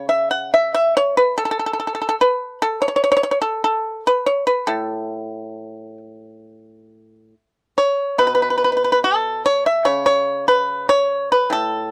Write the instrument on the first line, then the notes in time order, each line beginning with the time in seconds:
pipa
Already playing: C#3
0.09 E5
0.31 F#5
0.54 E5
0.75 E5
0.97 C#5
1.17 B4
1.38 A4
1.45 A4
1.51 A4
1.59 A4
1.66 A4
1.73 A4
1.80 A4
1.87 A4
1.95 A4
2.02 A4
2.09 A4
2.21 B4
2.62 A4
2.82 C#5
2.88 C#5
2.96 C#5
3.04 C#5
3.12 C#5
3.17 C#5
3.23 C#5
3.31 C#5
3.42 A4
3.64 A4
4.07 B4
4.26 C#5
4.47 B4
4.67 A2 A4
7.78 C#5
8.18 B2 B4
8.27 B4
8.35 B4
8.42 B4
8.50 B4
8.58 B4
8.64 B4
8.72 B4
8.77 B4
8.84 B4
8.92 B4
9.04 A4
9.46 C#5
9.66 E5
9.85 C#3 C#5
10.06 C#5
10.48 B4
10.89 C#5
11.32 B4
11.50 A2 A4